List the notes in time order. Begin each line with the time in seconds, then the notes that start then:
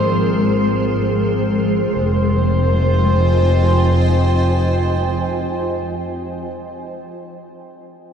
Already playing: G#1 F3 G#3 C4 G#4 A#4 C5
1.91 F1 F3 C4 F4 C5
2.09 C5
2.23 D#5
2.41 G5
2.57 G#5